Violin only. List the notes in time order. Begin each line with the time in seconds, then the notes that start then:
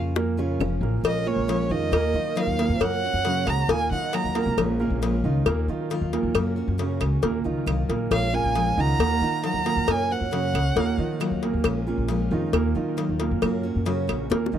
1.06 D#5
1.27 C#5
1.71 D#5
2.38 F5
2.82 F#5
3.49 A#5
3.71 G#5
3.92 F#5
4.14 A#5
8.13 F5
8.35 G#5
8.79 A#5
9.46 A#5
9.91 G#5
10.12 F#5